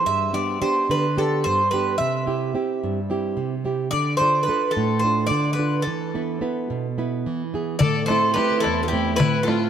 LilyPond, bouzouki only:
\new Staff \with { instrumentName = "Bouzouki" } { \time 7/8 \key a \minor \tempo 4 = 108 e''8 d''8 c''8 b'8 a'8 c''8 b'8 | e''2. r8 | d''8 c''8 b'8 a'8 c''8 d''8 b'8 | a'2. r8 |
d''8 c''8 b'8 a'16. a'32 g'8 b'8 a'8 | }